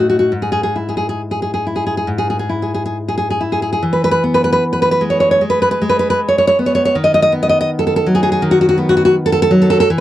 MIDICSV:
0, 0, Header, 1, 2, 480
1, 0, Start_track
1, 0, Key_signature, 4, "major"
1, 0, Tempo, 877193
1, 178, Time_signature, 4, 2, 24, 8
1, 2097, Tempo, 805369
1, 2577, Tempo, 770218
1, 4017, Tempo, 730816
1, 6023, End_track
2, 0, Start_track
2, 0, Title_t, "Nylon-string guitar"
2, 0, Program_c, 0, 24
2, 0, Note_on_c, 0, 45, 54
2, 0, Note_on_c, 0, 63, 42
2, 52, Note_on_c, 0, 66, 60
2, 98, Note_off_c, 0, 66, 0
2, 104, Note_on_c, 0, 66, 56
2, 162, Note_off_c, 0, 45, 0
2, 171, Note_off_c, 0, 66, 0
2, 174, Note_on_c, 0, 44, 47
2, 177, Note_off_c, 0, 63, 0
2, 230, Note_on_c, 0, 68, 45
2, 277, Note_off_c, 0, 68, 0
2, 284, Note_on_c, 0, 68, 59
2, 340, Note_off_c, 0, 68, 0
2, 347, Note_on_c, 0, 68, 56
2, 414, Note_off_c, 0, 68, 0
2, 414, Note_on_c, 0, 64, 34
2, 485, Note_on_c, 0, 68, 45
2, 524, Note_off_c, 0, 68, 0
2, 530, Note_on_c, 0, 68, 53
2, 590, Note_off_c, 0, 68, 0
2, 596, Note_on_c, 0, 68, 54
2, 660, Note_off_c, 0, 68, 0
2, 718, Note_on_c, 0, 68, 50
2, 771, Note_off_c, 0, 68, 0
2, 778, Note_on_c, 0, 68, 53
2, 834, Note_off_c, 0, 68, 0
2, 841, Note_on_c, 0, 68, 52
2, 903, Note_off_c, 0, 68, 0
2, 905, Note_off_c, 0, 64, 0
2, 912, Note_on_c, 0, 64, 35
2, 961, Note_on_c, 0, 68, 51
2, 1014, Note_off_c, 0, 68, 0
2, 1021, Note_on_c, 0, 68, 50
2, 1073, Note_off_c, 0, 68, 0
2, 1080, Note_on_c, 0, 68, 53
2, 1121, Note_off_c, 0, 44, 0
2, 1134, Note_on_c, 0, 44, 35
2, 1142, Note_off_c, 0, 68, 0
2, 1194, Note_on_c, 0, 68, 54
2, 1251, Note_off_c, 0, 68, 0
2, 1258, Note_on_c, 0, 68, 53
2, 1303, Note_off_c, 0, 68, 0
2, 1310, Note_on_c, 0, 68, 54
2, 1358, Note_off_c, 0, 64, 0
2, 1365, Note_on_c, 0, 64, 38
2, 1377, Note_off_c, 0, 68, 0
2, 1435, Note_on_c, 0, 68, 46
2, 1495, Note_off_c, 0, 68, 0
2, 1502, Note_on_c, 0, 68, 48
2, 1556, Note_off_c, 0, 68, 0
2, 1562, Note_on_c, 0, 68, 49
2, 1623, Note_off_c, 0, 68, 0
2, 1688, Note_on_c, 0, 68, 48
2, 1731, Note_off_c, 0, 68, 0
2, 1738, Note_on_c, 0, 68, 60
2, 1801, Note_off_c, 0, 68, 0
2, 1808, Note_on_c, 0, 68, 55
2, 1857, Note_off_c, 0, 64, 0
2, 1863, Note_on_c, 0, 64, 40
2, 1867, Note_off_c, 0, 68, 0
2, 1927, Note_on_c, 0, 68, 48
2, 1975, Note_off_c, 0, 68, 0
2, 1982, Note_on_c, 0, 68, 50
2, 2032, Note_off_c, 0, 68, 0
2, 2039, Note_on_c, 0, 68, 51
2, 2070, Note_off_c, 0, 44, 0
2, 2093, Note_on_c, 0, 52, 56
2, 2096, Note_off_c, 0, 64, 0
2, 2096, Note_off_c, 0, 68, 0
2, 2154, Note_on_c, 0, 71, 65
2, 2214, Note_off_c, 0, 71, 0
2, 2221, Note_on_c, 0, 71, 81
2, 2258, Note_off_c, 0, 71, 0
2, 2265, Note_on_c, 0, 71, 83
2, 2331, Note_off_c, 0, 71, 0
2, 2338, Note_on_c, 0, 59, 47
2, 2402, Note_on_c, 0, 71, 74
2, 2453, Note_off_c, 0, 71, 0
2, 2460, Note_on_c, 0, 71, 75
2, 2503, Note_off_c, 0, 71, 0
2, 2510, Note_on_c, 0, 71, 86
2, 2574, Note_off_c, 0, 71, 0
2, 2633, Note_on_c, 0, 71, 67
2, 2683, Note_off_c, 0, 71, 0
2, 2690, Note_on_c, 0, 71, 78
2, 2741, Note_off_c, 0, 71, 0
2, 2749, Note_on_c, 0, 71, 81
2, 2809, Note_on_c, 0, 56, 50
2, 2817, Note_off_c, 0, 71, 0
2, 2865, Note_on_c, 0, 73, 64
2, 2921, Note_off_c, 0, 73, 0
2, 2929, Note_on_c, 0, 73, 69
2, 2989, Note_off_c, 0, 73, 0
2, 2996, Note_on_c, 0, 73, 73
2, 3041, Note_off_c, 0, 52, 0
2, 3052, Note_off_c, 0, 56, 0
2, 3059, Note_on_c, 0, 56, 46
2, 3063, Note_off_c, 0, 73, 0
2, 3069, Note_off_c, 0, 59, 0
2, 3113, Note_on_c, 0, 71, 80
2, 3181, Note_off_c, 0, 71, 0
2, 3188, Note_on_c, 0, 71, 71
2, 3238, Note_off_c, 0, 71, 0
2, 3245, Note_on_c, 0, 71, 74
2, 3304, Note_off_c, 0, 56, 0
2, 3308, Note_off_c, 0, 71, 0
2, 3311, Note_on_c, 0, 56, 53
2, 3360, Note_on_c, 0, 71, 66
2, 3414, Note_off_c, 0, 71, 0
2, 3421, Note_on_c, 0, 71, 73
2, 3481, Note_off_c, 0, 71, 0
2, 3488, Note_on_c, 0, 71, 77
2, 3547, Note_off_c, 0, 71, 0
2, 3604, Note_on_c, 0, 73, 78
2, 3657, Note_off_c, 0, 73, 0
2, 3665, Note_on_c, 0, 73, 78
2, 3714, Note_off_c, 0, 73, 0
2, 3722, Note_on_c, 0, 73, 91
2, 3781, Note_off_c, 0, 73, 0
2, 3793, Note_on_c, 0, 59, 51
2, 3838, Note_on_c, 0, 73, 70
2, 3885, Note_off_c, 0, 73, 0
2, 3892, Note_on_c, 0, 73, 85
2, 3950, Note_off_c, 0, 73, 0
2, 3958, Note_on_c, 0, 73, 83
2, 4018, Note_off_c, 0, 73, 0
2, 4019, Note_off_c, 0, 56, 0
2, 4020, Note_on_c, 0, 51, 63
2, 4024, Note_off_c, 0, 59, 0
2, 4076, Note_on_c, 0, 75, 78
2, 4136, Note_off_c, 0, 75, 0
2, 4144, Note_on_c, 0, 75, 85
2, 4190, Note_off_c, 0, 75, 0
2, 4198, Note_on_c, 0, 75, 98
2, 4262, Note_off_c, 0, 75, 0
2, 4263, Note_on_c, 0, 59, 53
2, 4331, Note_on_c, 0, 75, 79
2, 4367, Note_off_c, 0, 75, 0
2, 4375, Note_on_c, 0, 75, 83
2, 4441, Note_off_c, 0, 75, 0
2, 4449, Note_on_c, 0, 75, 84
2, 4508, Note_off_c, 0, 75, 0
2, 4570, Note_on_c, 0, 69, 69
2, 4613, Note_off_c, 0, 69, 0
2, 4621, Note_on_c, 0, 69, 64
2, 4674, Note_off_c, 0, 69, 0
2, 4682, Note_on_c, 0, 69, 77
2, 4745, Note_off_c, 0, 69, 0
2, 4750, Note_on_c, 0, 54, 61
2, 4805, Note_on_c, 0, 68, 75
2, 4850, Note_off_c, 0, 68, 0
2, 4858, Note_on_c, 0, 68, 77
2, 4909, Note_off_c, 0, 68, 0
2, 4916, Note_on_c, 0, 68, 74
2, 4960, Note_off_c, 0, 51, 0
2, 4981, Note_off_c, 0, 68, 0
2, 4984, Note_on_c, 0, 51, 62
2, 4985, Note_off_c, 0, 59, 0
2, 5044, Note_on_c, 0, 66, 82
2, 5100, Note_off_c, 0, 66, 0
2, 5108, Note_on_c, 0, 66, 76
2, 5151, Note_off_c, 0, 66, 0
2, 5159, Note_on_c, 0, 66, 89
2, 5217, Note_on_c, 0, 59, 55
2, 5220, Note_off_c, 0, 66, 0
2, 5293, Note_on_c, 0, 66, 77
2, 5335, Note_off_c, 0, 66, 0
2, 5343, Note_on_c, 0, 66, 77
2, 5389, Note_off_c, 0, 66, 0
2, 5397, Note_on_c, 0, 66, 89
2, 5459, Note_off_c, 0, 66, 0
2, 5463, Note_off_c, 0, 54, 0
2, 5534, Note_on_c, 0, 69, 98
2, 5569, Note_off_c, 0, 69, 0
2, 5577, Note_on_c, 0, 69, 99
2, 5633, Note_off_c, 0, 69, 0
2, 5641, Note_on_c, 0, 69, 107
2, 5698, Note_on_c, 0, 54, 67
2, 5701, Note_off_c, 0, 69, 0
2, 5769, Note_on_c, 0, 69, 82
2, 5817, Note_off_c, 0, 69, 0
2, 5825, Note_on_c, 0, 69, 96
2, 5882, Note_off_c, 0, 69, 0
2, 5890, Note_on_c, 0, 69, 102
2, 5912, Note_off_c, 0, 51, 0
2, 5936, Note_off_c, 0, 59, 0
2, 5937, Note_off_c, 0, 54, 0
2, 5944, Note_off_c, 0, 69, 0
2, 5956, Note_on_c, 0, 52, 72
2, 6023, Note_off_c, 0, 52, 0
2, 6023, End_track
0, 0, End_of_file